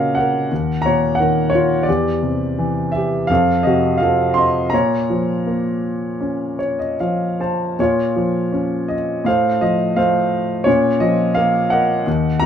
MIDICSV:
0, 0, Header, 1, 2, 480
1, 0, Start_track
1, 0, Key_signature, -5, "minor"
1, 0, Tempo, 681818
1, 1320, Tempo, 708383
1, 1321, Time_signature, 4, 2, 24, 8
1, 2760, Tempo, 734394
1, 4200, Tempo, 792602
1, 5160, Tempo, 741656
1, 5640, Tempo, 719424
1, 6600, Tempo, 698487
1, 8310, End_track
2, 0, Start_track
2, 0, Title_t, "Grand piano"
2, 0, Program_c, 0, 0
2, 0, Control_c, 0, 64, 127
2, 0, Note_on_c, 0, 46, 51
2, 0, Note_on_c, 0, 49, 41
2, 0, Note_on_c, 0, 61, 46
2, 0, Note_on_c, 0, 65, 49
2, 0, Note_on_c, 0, 66, 51
2, 0, Note_on_c, 0, 70, 54
2, 0, Note_on_c, 0, 73, 64
2, 0, Note_on_c, 0, 75, 63
2, 0, Note_on_c, 0, 77, 68
2, 103, Note_on_c, 0, 78, 71
2, 111, Note_off_c, 0, 70, 0
2, 122, Note_off_c, 0, 77, 0
2, 133, Note_on_c, 0, 70, 54
2, 333, Note_off_c, 0, 46, 0
2, 342, Note_off_c, 0, 49, 0
2, 350, Note_off_c, 0, 61, 0
2, 361, Note_on_c, 0, 39, 56
2, 368, Control_c, 0, 64, 0
2, 369, Note_off_c, 0, 65, 0
2, 371, Note_off_c, 0, 73, 0
2, 373, Note_off_c, 0, 75, 0
2, 374, Note_off_c, 0, 66, 0
2, 489, Control_c, 0, 64, 127
2, 560, Note_off_c, 0, 78, 0
2, 575, Note_off_c, 0, 70, 0
2, 575, Note_on_c, 0, 82, 77
2, 603, Note_on_c, 0, 73, 61
2, 606, Note_on_c, 0, 46, 45
2, 810, Note_on_c, 0, 78, 76
2, 825, Note_off_c, 0, 73, 0
2, 835, Note_off_c, 0, 82, 0
2, 844, Note_on_c, 0, 70, 59
2, 846, Note_on_c, 0, 51, 47
2, 1048, Note_off_c, 0, 78, 0
2, 1053, Note_on_c, 0, 73, 71
2, 1066, Note_off_c, 0, 70, 0
2, 1090, Note_on_c, 0, 65, 55
2, 1290, Note_on_c, 0, 74, 72
2, 1293, Note_off_c, 0, 39, 0
2, 1303, Note_off_c, 0, 46, 0
2, 1309, Note_off_c, 0, 65, 0
2, 1310, Note_off_c, 0, 51, 0
2, 1314, Note_off_c, 0, 73, 0
2, 1326, Note_on_c, 0, 40, 58
2, 1326, Note_on_c, 0, 67, 61
2, 1330, Control_c, 0, 64, 0
2, 1441, Control_c, 0, 64, 127
2, 1557, Note_on_c, 0, 48, 47
2, 1802, Note_on_c, 0, 52, 48
2, 2021, Note_off_c, 0, 67, 0
2, 2026, Note_on_c, 0, 76, 67
2, 2052, Note_off_c, 0, 74, 0
2, 2057, Note_on_c, 0, 67, 55
2, 2260, Note_off_c, 0, 40, 0
2, 2264, Note_off_c, 0, 48, 0
2, 2267, Note_on_c, 0, 77, 79
2, 2271, Note_off_c, 0, 52, 0
2, 2274, Note_off_c, 0, 67, 0
2, 2283, Note_off_c, 0, 76, 0
2, 2286, Note_on_c, 0, 41, 58
2, 2293, Control_c, 0, 64, 0
2, 2295, Note_on_c, 0, 69, 59
2, 2412, Control_c, 0, 64, 127
2, 2510, Note_on_c, 0, 75, 77
2, 2511, Note_off_c, 0, 69, 0
2, 2521, Note_off_c, 0, 77, 0
2, 2529, Note_on_c, 0, 48, 45
2, 2537, Note_on_c, 0, 66, 60
2, 2738, Note_off_c, 0, 75, 0
2, 2743, Note_on_c, 0, 77, 70
2, 2752, Note_off_c, 0, 66, 0
2, 2769, Note_on_c, 0, 53, 43
2, 2773, Note_on_c, 0, 69, 56
2, 2982, Note_on_c, 0, 84, 77
2, 2985, Note_off_c, 0, 69, 0
2, 2994, Note_off_c, 0, 77, 0
2, 3004, Note_on_c, 0, 75, 61
2, 3210, Note_off_c, 0, 41, 0
2, 3215, Note_on_c, 0, 82, 76
2, 3217, Note_off_c, 0, 48, 0
2, 3223, Note_off_c, 0, 75, 0
2, 3225, Note_off_c, 0, 53, 0
2, 3236, Note_off_c, 0, 84, 0
2, 3239, Note_on_c, 0, 46, 56
2, 3244, Note_on_c, 0, 73, 60
2, 3245, Control_c, 0, 64, 0
2, 3359, Control_c, 0, 64, 127
2, 3478, Note_on_c, 0, 53, 44
2, 3717, Note_on_c, 0, 58, 40
2, 4202, Note_on_c, 0, 61, 47
2, 4409, Note_off_c, 0, 53, 0
2, 4425, Note_off_c, 0, 73, 0
2, 4434, Note_on_c, 0, 73, 51
2, 4546, Note_off_c, 0, 73, 0
2, 4556, Note_on_c, 0, 75, 50
2, 4645, Note_off_c, 0, 82, 0
2, 4654, Note_off_c, 0, 58, 0
2, 4671, Note_off_c, 0, 75, 0
2, 4684, Note_on_c, 0, 77, 49
2, 4686, Note_on_c, 0, 53, 40
2, 4910, Note_off_c, 0, 77, 0
2, 4924, Note_on_c, 0, 72, 49
2, 4929, Note_on_c, 0, 81, 48
2, 5137, Note_off_c, 0, 61, 0
2, 5138, Note_off_c, 0, 46, 0
2, 5144, Note_off_c, 0, 72, 0
2, 5146, Note_off_c, 0, 81, 0
2, 5150, Note_off_c, 0, 53, 0
2, 5161, Note_on_c, 0, 46, 56
2, 5168, Control_c, 0, 64, 0
2, 5168, Note_on_c, 0, 73, 63
2, 5176, Note_on_c, 0, 65, 47
2, 5281, Control_c, 0, 64, 127
2, 5401, Note_on_c, 0, 53, 47
2, 5637, Note_on_c, 0, 61, 49
2, 5876, Note_on_c, 0, 75, 60
2, 5908, Note_off_c, 0, 73, 0
2, 6098, Note_off_c, 0, 46, 0
2, 6101, Note_off_c, 0, 53, 0
2, 6106, Note_off_c, 0, 65, 0
2, 6108, Note_off_c, 0, 61, 0
2, 6117, Note_on_c, 0, 45, 60
2, 6128, Note_on_c, 0, 77, 73
2, 6129, Note_off_c, 0, 75, 0
2, 6132, Control_c, 0, 64, 0
2, 6136, Note_on_c, 0, 72, 53
2, 6138, Note_on_c, 0, 69, 49
2, 6268, Control_c, 0, 64, 127
2, 6362, Note_on_c, 0, 75, 75
2, 6363, Note_on_c, 0, 53, 46
2, 6374, Note_off_c, 0, 77, 0
2, 6594, Note_off_c, 0, 72, 0
2, 6595, Note_off_c, 0, 69, 0
2, 6597, Note_on_c, 0, 77, 75
2, 6598, Note_on_c, 0, 57, 53
2, 6604, Note_on_c, 0, 72, 55
2, 6605, Note_on_c, 0, 69, 55
2, 6606, Note_off_c, 0, 75, 0
2, 7049, Note_off_c, 0, 45, 0
2, 7054, Note_off_c, 0, 72, 0
2, 7055, Note_off_c, 0, 69, 0
2, 7057, Note_off_c, 0, 53, 0
2, 7062, Note_on_c, 0, 73, 76
2, 7064, Note_off_c, 0, 57, 0
2, 7075, Note_on_c, 0, 61, 53
2, 7076, Note_on_c, 0, 46, 66
2, 7089, Control_c, 0, 64, 0
2, 7093, Note_off_c, 0, 77, 0
2, 7227, Control_c, 0, 64, 127
2, 7311, Note_on_c, 0, 75, 78
2, 7312, Note_on_c, 0, 53, 52
2, 7319, Note_off_c, 0, 73, 0
2, 7546, Note_on_c, 0, 77, 83
2, 7558, Note_on_c, 0, 58, 53
2, 7564, Note_off_c, 0, 75, 0
2, 7777, Note_off_c, 0, 77, 0
2, 7791, Note_on_c, 0, 78, 79
2, 7801, Note_on_c, 0, 70, 54
2, 7804, Note_on_c, 0, 75, 58
2, 8012, Note_off_c, 0, 46, 0
2, 8012, Note_off_c, 0, 61, 0
2, 8016, Note_off_c, 0, 53, 0
2, 8025, Note_off_c, 0, 58, 0
2, 8040, Note_on_c, 0, 39, 65
2, 8050, Control_c, 0, 64, 0
2, 8184, Control_c, 0, 64, 127
2, 8267, Note_on_c, 0, 82, 92
2, 8280, Note_on_c, 0, 46, 56
2, 8289, Note_off_c, 0, 78, 0
2, 8310, Note_off_c, 0, 39, 0
2, 8310, Note_off_c, 0, 46, 0
2, 8310, Note_off_c, 0, 70, 0
2, 8310, Note_off_c, 0, 75, 0
2, 8310, Note_off_c, 0, 82, 0
2, 8310, End_track
0, 0, End_of_file